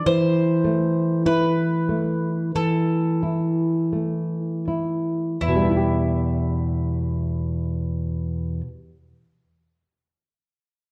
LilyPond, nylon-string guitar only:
\new Staff \with { instrumentName = "Nylon-string guitar" } { \time 4/4 \key e \minor \tempo 4 = 43 e8 a8 e'8 a8 e8 e'8 a8 e'8 | <e, b, g b e' g'>1 | }